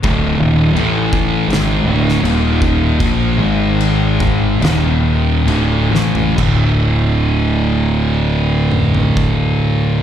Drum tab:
CC |x---x---x---x---|x---x---x---x---|x---------------|
SD |--------o--o----|--------o-----o-|----------------|
T2 |----------------|----------------|----------o-----|
FT |----------------|---------------o|-----------o----|
BD |o-----o-------o-|o-----o---------|o-----------o---|